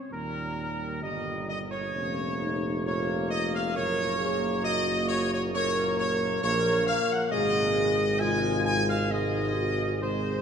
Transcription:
Already playing: C4 C#5
0.10 D#2 A#2 G3 A#4
1.02 G1 A#2 G3 D#5
1.48 D#5
1.71 C#5
1.93 F1 A#2 A#3 C#4
2.41 D#4
2.85 A#2 A#3 F4 C#5
3.30 D#5
3.54 F5
3.74 F#1 A#2 A#3 A#4 C#5
4.19 G#4
4.63 F#4 D#5
5.08 C#5
5.33 C#5
5.53 A#2 A#3 A#4 C#5
5.99 C#5
6.42 A#1 A#2 A#3 A#4 C#5
6.87 F5
7.11 F#5
7.31 G#1 C3 G#3 G#4 D#5
8.19 C3 G#3 F4 G#5
8.65 G#5
8.89 F5
9.09 C3 G#3 D#4 D#5
9.54 F#4
10.00 C3 G#3 G#4 C5

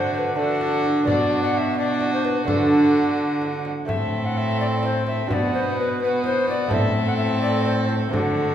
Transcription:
Already playing: D3 A3 D4 F#4 C5
0.13 C5
0.18 B4
0.34 A3 D4 F#4 A4
0.38 F#4
0.61 frame drum
0.84 frame drum
1.03 B2 B3 D4 F#4 D5, frame drum
1.08 D4 F#4
1.42 F#5
1.55 E5 F#5
1.77 D4 F#4 D5
2.01 frame drum
2.14 C5
2.25 B4, frame drum
2.44 D3 A3 D4 F#4 A4, frame drum
3.42 frame drum
3.65 frame drum
3.85 A2 A3 C4 A4 E5, frame drum
3.90 C4 A4
4.25 F#5
4.37 E5
4.60 D5
4.83 C5, frame drum
5.07 E5, frame drum
5.27 B2 D4 F#4 E5, frame drum
5.32 B3 D5
5.54 C5
5.79 B4
6.02 B3 F#4 B4
6.24 C5, frame drum
6.48 D5, frame drum
6.67 A2 A3 C4 A4, frame drum
6.72 C4 E5
7.08 F#5
7.17 E5
7.42 D5
7.65 C5, frame drum
7.89 C5, frame drum
8.09 D3 A3 F#4 A4
8.13 D3 D4 F#4, frame drum

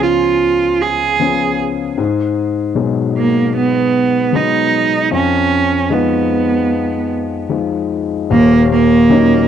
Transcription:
Already playing: C#2 F3 B3 C#4
0.03 F4
0.82 G#4
1.20 F3 B3 C#4
1.98 G#2
2.75 B2 F#3 G#3
3.18 A#3
3.56 B3
4.33 F#3 G#3 B3 D#4
5.12 F2 C#4
5.90 F3 G#3 B3 D#4
7.49 F3 G#3 D#4
8.30 D#1 D#2 A#3
8.72 A#3
9.09 F#3 C#4 D#4

